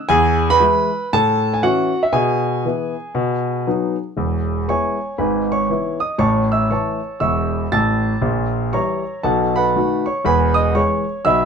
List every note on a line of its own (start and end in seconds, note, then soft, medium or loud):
0.09 0.53 E2 loud
0.09 0.49 G#4 medium
0.09 0.51 G#5 loud
0.50 1.07 B4 medium
0.50 1.11 B5 loud
0.60 0.88 E3 soft
0.60 0.89 G#3 medium
0.60 0.89 E4 medium
1.13 1.56 A2 medium
1.13 1.52 A4 medium
1.13 1.54 A5 loud
1.54 1.63 G#5 medium
1.63 1.91 E3 medium
1.63 1.91 C#4 medium
1.63 1.91 E4 medium
1.63 2.02 F#4 medium
1.63 2.04 F#5 medium
2.03 2.13 E5 medium
2.13 2.56 B2 medium
2.13 3.94 G#4 medium
2.13 3.97 G#5 medium
2.65 2.93 E3 soft
2.65 2.93 B3 soft
2.65 2.94 E4 soft
3.15 3.58 B2 medium
3.67 3.95 F#3 soft
3.67 3.95 B3 soft
3.67 3.95 D#4 soft
4.17 4.60 E1 medium
4.17 4.60 E2 medium
4.68 4.96 G#3 soft
4.68 4.96 B3 soft
4.68 4.97 E4 soft
4.68 5.16 C#5 medium
4.68 5.16 G#5 medium
4.68 5.19 C#6 medium
5.18 5.62 G#1 medium
5.18 5.61 G#2 medium
5.18 5.48 B4 soft
5.18 5.48 G#5 soft
5.18 5.50 B5 soft
5.52 5.99 C#5 medium
5.52 6.02 C#6 medium
5.69 5.97 E3 soft
5.69 5.98 B3 soft
5.69 5.98 E4 medium
6.00 6.19 D#5 soft
6.00 6.19 D#6 medium
6.18 6.62 A1 medium
6.18 6.62 A2 medium
6.18 6.49 C#5 medium
6.18 6.49 A5 medium
6.18 6.51 C#6 medium
6.52 6.70 E5 soft
6.52 6.71 E6 medium
6.71 6.99 E3 soft
6.71 6.99 A3 soft
6.71 6.99 E4 soft
6.71 7.18 C#5 soft
6.71 7.19 A5 medium
6.71 7.20 C#6 medium
7.20 7.64 E1 medium
7.20 7.64 E2 medium
7.20 7.68 E5 soft
7.20 7.68 C#6 medium
7.20 7.71 E6 medium
7.72 8.13 A1 medium
7.72 8.13 A2 medium
7.72 8.20 A5 medium
7.72 8.20 E6 medium
7.72 8.23 A6 medium
8.21 8.65 A#1 medium
8.21 8.65 A#2 medium
8.73 9.02 E3 soft
8.73 9.01 G3 soft
8.73 9.01 E4 soft
8.73 9.21 C#5 medium
8.73 9.21 A#5 medium
8.73 9.24 C#6 medium
9.23 9.67 B1 medium
9.23 9.68 B2 medium
9.23 9.54 A4 medium
9.23 9.54 F#5 medium
9.23 9.56 A5 medium
9.56 10.04 B4 medium
9.56 10.04 F#5 medium
9.56 10.07 B5 medium
9.76 10.03 D#3 soft
9.76 10.04 A3 soft
9.76 10.04 F#4 soft
10.06 10.25 C#5 medium
10.06 10.25 C#6 medium
10.25 10.69 E1 medium
10.25 10.68 E2 medium
10.25 10.56 B4 medium
10.25 10.56 G#5 medium
10.25 10.58 B5 medium
10.54 10.74 D#5 medium
10.54 10.75 D#6 medium
10.75 11.03 E3 soft
10.75 11.03 G#3 soft
10.75 11.04 G#4 soft
10.75 11.24 C#5 medium
10.75 11.27 C#6 medium
11.25 11.45 B1 medium
11.25 11.45 B2 medium
11.25 11.45 E5 medium
11.25 11.45 B5 medium
11.25 11.45 E6 medium